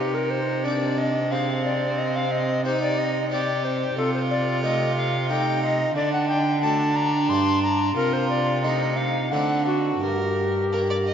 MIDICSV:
0, 0, Header, 1, 5, 480
1, 0, Start_track
1, 0, Tempo, 665927
1, 1425, Time_signature, 3, 2, 24, 8
1, 6221, Tempo, 696056
1, 7949, End_track
2, 0, Start_track
2, 0, Title_t, "Recorder"
2, 0, Program_c, 0, 74
2, 0, Note_on_c, 0, 67, 71
2, 105, Note_on_c, 0, 70, 63
2, 116, Note_off_c, 0, 67, 0
2, 218, Note_on_c, 0, 72, 58
2, 229, Note_off_c, 0, 70, 0
2, 463, Note_on_c, 0, 74, 64
2, 473, Note_off_c, 0, 72, 0
2, 707, Note_on_c, 0, 75, 66
2, 717, Note_off_c, 0, 74, 0
2, 946, Note_on_c, 0, 77, 78
2, 957, Note_off_c, 0, 75, 0
2, 1181, Note_off_c, 0, 77, 0
2, 1186, Note_on_c, 0, 74, 62
2, 1428, Note_on_c, 0, 75, 63
2, 1439, Note_off_c, 0, 74, 0
2, 1555, Note_on_c, 0, 77, 64
2, 1566, Note_off_c, 0, 75, 0
2, 1668, Note_on_c, 0, 75, 66
2, 1679, Note_off_c, 0, 77, 0
2, 1904, Note_off_c, 0, 75, 0
2, 1908, Note_on_c, 0, 72, 69
2, 2023, Note_off_c, 0, 72, 0
2, 2030, Note_on_c, 0, 74, 75
2, 2147, Note_on_c, 0, 75, 69
2, 2158, Note_off_c, 0, 74, 0
2, 2382, Note_off_c, 0, 75, 0
2, 2389, Note_on_c, 0, 74, 82
2, 2627, Note_on_c, 0, 72, 69
2, 2638, Note_off_c, 0, 74, 0
2, 2860, Note_off_c, 0, 72, 0
2, 2864, Note_on_c, 0, 69, 79
2, 2976, Note_off_c, 0, 69, 0
2, 2985, Note_on_c, 0, 72, 63
2, 3028, Note_off_c, 0, 72, 0
2, 3104, Note_on_c, 0, 74, 70
2, 3332, Note_off_c, 0, 74, 0
2, 3340, Note_on_c, 0, 75, 76
2, 3570, Note_off_c, 0, 75, 0
2, 3578, Note_on_c, 0, 77, 66
2, 3809, Note_off_c, 0, 77, 0
2, 3817, Note_on_c, 0, 79, 81
2, 4050, Note_off_c, 0, 79, 0
2, 4056, Note_on_c, 0, 75, 78
2, 4289, Note_off_c, 0, 75, 0
2, 4293, Note_on_c, 0, 74, 83
2, 4410, Note_off_c, 0, 74, 0
2, 4415, Note_on_c, 0, 78, 69
2, 4525, Note_off_c, 0, 78, 0
2, 4529, Note_on_c, 0, 79, 78
2, 4766, Note_off_c, 0, 79, 0
2, 4774, Note_on_c, 0, 81, 82
2, 5015, Note_on_c, 0, 82, 82
2, 5025, Note_off_c, 0, 81, 0
2, 5257, Note_on_c, 0, 84, 84
2, 5268, Note_off_c, 0, 82, 0
2, 5495, Note_off_c, 0, 84, 0
2, 5499, Note_on_c, 0, 82, 77
2, 5733, Note_off_c, 0, 82, 0
2, 5737, Note_on_c, 0, 70, 77
2, 5860, Note_on_c, 0, 72, 64
2, 5871, Note_off_c, 0, 70, 0
2, 5974, Note_off_c, 0, 72, 0
2, 5978, Note_on_c, 0, 74, 66
2, 6223, Note_on_c, 0, 75, 73
2, 6233, Note_off_c, 0, 74, 0
2, 6450, Note_on_c, 0, 77, 71
2, 6461, Note_off_c, 0, 75, 0
2, 6691, Note_on_c, 0, 78, 74
2, 6701, Note_off_c, 0, 77, 0
2, 6931, Note_off_c, 0, 78, 0
2, 6934, Note_on_c, 0, 66, 60
2, 7173, Note_on_c, 0, 67, 64
2, 7184, Note_off_c, 0, 66, 0
2, 7949, Note_off_c, 0, 67, 0
2, 7949, End_track
3, 0, Start_track
3, 0, Title_t, "Violin"
3, 0, Program_c, 1, 40
3, 0, Note_on_c, 1, 63, 52
3, 465, Note_on_c, 1, 62, 63
3, 475, Note_off_c, 1, 63, 0
3, 948, Note_on_c, 1, 60, 61
3, 959, Note_off_c, 1, 62, 0
3, 1907, Note_off_c, 1, 60, 0
3, 1915, Note_on_c, 1, 63, 68
3, 2376, Note_off_c, 1, 63, 0
3, 2393, Note_on_c, 1, 67, 62
3, 2867, Note_on_c, 1, 65, 62
3, 2878, Note_off_c, 1, 67, 0
3, 3821, Note_on_c, 1, 63, 62
3, 3832, Note_off_c, 1, 65, 0
3, 4290, Note_off_c, 1, 63, 0
3, 4294, Note_on_c, 1, 62, 57
3, 4764, Note_off_c, 1, 62, 0
3, 4775, Note_on_c, 1, 62, 74
3, 5720, Note_off_c, 1, 62, 0
3, 5742, Note_on_c, 1, 65, 69
3, 6223, Note_on_c, 1, 63, 58
3, 6234, Note_off_c, 1, 65, 0
3, 6693, Note_off_c, 1, 63, 0
3, 6697, Note_on_c, 1, 62, 50
3, 7167, Note_off_c, 1, 62, 0
3, 7178, Note_on_c, 1, 70, 56
3, 7604, Note_off_c, 1, 70, 0
3, 7665, Note_on_c, 1, 70, 59
3, 7712, Note_off_c, 1, 70, 0
3, 7786, Note_on_c, 1, 74, 53
3, 7833, Note_off_c, 1, 74, 0
3, 7904, Note_on_c, 1, 75, 58
3, 7949, Note_off_c, 1, 75, 0
3, 7949, End_track
4, 0, Start_track
4, 0, Title_t, "Harpsichord"
4, 0, Program_c, 2, 6
4, 0, Note_on_c, 2, 48, 43
4, 466, Note_on_c, 2, 60, 35
4, 470, Note_on_c, 2, 63, 31
4, 472, Note_on_c, 2, 67, 35
4, 812, Note_off_c, 2, 60, 0
4, 814, Note_off_c, 2, 63, 0
4, 815, Note_off_c, 2, 67, 0
4, 948, Note_on_c, 2, 60, 36
4, 955, Note_on_c, 2, 68, 34
4, 1398, Note_off_c, 2, 60, 0
4, 1402, Note_off_c, 2, 68, 0
4, 1909, Note_on_c, 2, 60, 38
4, 1912, Note_on_c, 2, 63, 37
4, 1915, Note_on_c, 2, 67, 44
4, 2250, Note_off_c, 2, 60, 0
4, 2252, Note_off_c, 2, 63, 0
4, 2254, Note_off_c, 2, 67, 0
4, 2387, Note_on_c, 2, 60, 38
4, 2389, Note_on_c, 2, 63, 38
4, 2391, Note_on_c, 2, 67, 41
4, 2727, Note_off_c, 2, 60, 0
4, 2728, Note_off_c, 2, 63, 0
4, 2730, Note_off_c, 2, 67, 0
4, 2827, Note_off_c, 2, 48, 0
4, 2861, Note_on_c, 2, 48, 49
4, 3336, Note_on_c, 2, 57, 36
4, 3339, Note_on_c, 2, 63, 38
4, 3341, Note_on_c, 2, 67, 41
4, 3679, Note_off_c, 2, 57, 0
4, 3681, Note_off_c, 2, 63, 0
4, 3682, Note_off_c, 2, 67, 0
4, 3817, Note_on_c, 2, 57, 40
4, 3819, Note_on_c, 2, 63, 36
4, 3822, Note_on_c, 2, 67, 42
4, 4161, Note_off_c, 2, 57, 0
4, 4163, Note_off_c, 2, 63, 0
4, 4164, Note_off_c, 2, 67, 0
4, 4265, Note_off_c, 2, 48, 0
4, 4294, Note_on_c, 2, 50, 52
4, 4777, Note_on_c, 2, 57, 35
4, 4779, Note_on_c, 2, 62, 37
4, 4782, Note_on_c, 2, 66, 40
4, 5123, Note_off_c, 2, 57, 0
4, 5125, Note_off_c, 2, 62, 0
4, 5127, Note_off_c, 2, 66, 0
4, 5228, Note_off_c, 2, 50, 0
4, 5255, Note_on_c, 2, 43, 53
4, 5261, Note_on_c, 2, 62, 35
4, 5267, Note_on_c, 2, 67, 39
4, 5709, Note_off_c, 2, 43, 0
4, 5712, Note_off_c, 2, 62, 0
4, 5715, Note_off_c, 2, 67, 0
4, 5742, Note_on_c, 2, 48, 48
4, 6226, Note_on_c, 2, 57, 38
4, 6228, Note_on_c, 2, 60, 41
4, 6233, Note_on_c, 2, 63, 36
4, 6563, Note_off_c, 2, 57, 0
4, 6564, Note_off_c, 2, 60, 0
4, 6567, Note_off_c, 2, 63, 0
4, 6666, Note_off_c, 2, 48, 0
4, 6696, Note_on_c, 2, 50, 45
4, 6698, Note_on_c, 2, 57, 37
4, 6700, Note_on_c, 2, 60, 34
4, 6705, Note_on_c, 2, 62, 38
4, 7148, Note_off_c, 2, 50, 0
4, 7149, Note_off_c, 2, 57, 0
4, 7150, Note_off_c, 2, 60, 0
4, 7152, Note_off_c, 2, 62, 0
4, 7176, Note_on_c, 2, 43, 49
4, 7670, Note_on_c, 2, 58, 34
4, 7673, Note_on_c, 2, 62, 40
4, 7949, Note_off_c, 2, 43, 0
4, 7949, Note_off_c, 2, 58, 0
4, 7949, Note_off_c, 2, 62, 0
4, 7949, End_track
5, 0, Start_track
5, 0, Title_t, "Cello"
5, 0, Program_c, 3, 42
5, 0, Note_on_c, 3, 48, 64
5, 2827, Note_off_c, 3, 48, 0
5, 2856, Note_on_c, 3, 48, 69
5, 4263, Note_off_c, 3, 48, 0
5, 4292, Note_on_c, 3, 50, 64
5, 5255, Note_on_c, 3, 43, 63
5, 5265, Note_off_c, 3, 50, 0
5, 5736, Note_off_c, 3, 43, 0
5, 5740, Note_on_c, 3, 48, 67
5, 6695, Note_on_c, 3, 50, 54
5, 6705, Note_off_c, 3, 48, 0
5, 7175, Note_off_c, 3, 50, 0
5, 7179, Note_on_c, 3, 43, 58
5, 7949, Note_off_c, 3, 43, 0
5, 7949, End_track
0, 0, End_of_file